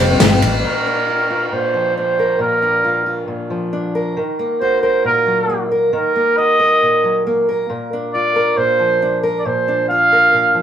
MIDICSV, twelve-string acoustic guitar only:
0, 0, Header, 1, 2, 480
1, 0, Start_track
1, 0, Key_signature, -2, "major"
1, 0, Tempo, 440529
1, 702, Time_signature, 4, 2, 24, 8
1, 11575, End_track
2, 0, Start_track
2, 0, Title_t, "Twelve-string acoustic guitar"
2, 0, Program_c, 0, 25
2, 7, Note_on_c, 0, 65, 74
2, 75, Note_off_c, 0, 65, 0
2, 88, Note_on_c, 0, 65, 55
2, 106, Note_on_c, 0, 67, 63
2, 116, Note_on_c, 0, 60, 57
2, 124, Note_on_c, 0, 55, 50
2, 210, Note_off_c, 0, 55, 0
2, 211, Note_on_c, 0, 41, 82
2, 215, Note_off_c, 0, 65, 0
2, 219, Note_off_c, 0, 60, 0
2, 219, Note_off_c, 0, 67, 0
2, 220, Note_on_c, 0, 53, 92
2, 223, Note_on_c, 0, 55, 87
2, 232, Note_on_c, 0, 60, 83
2, 232, Note_on_c, 0, 67, 95
2, 239, Note_on_c, 0, 65, 98
2, 321, Note_off_c, 0, 65, 0
2, 334, Note_on_c, 0, 65, 53
2, 335, Note_off_c, 0, 67, 0
2, 336, Note_off_c, 0, 41, 0
2, 341, Note_off_c, 0, 53, 0
2, 342, Note_off_c, 0, 55, 0
2, 347, Note_off_c, 0, 60, 0
2, 348, Note_on_c, 0, 67, 56
2, 358, Note_on_c, 0, 60, 52
2, 369, Note_on_c, 0, 55, 47
2, 439, Note_off_c, 0, 55, 0
2, 451, Note_off_c, 0, 60, 0
2, 452, Note_on_c, 0, 55, 65
2, 458, Note_off_c, 0, 65, 0
2, 462, Note_off_c, 0, 67, 0
2, 464, Note_on_c, 0, 60, 69
2, 475, Note_on_c, 0, 67, 73
2, 484, Note_on_c, 0, 65, 77
2, 697, Note_off_c, 0, 55, 0
2, 703, Note_off_c, 0, 60, 0
2, 708, Note_off_c, 0, 67, 0
2, 713, Note_off_c, 0, 65, 0
2, 11575, End_track
0, 0, End_of_file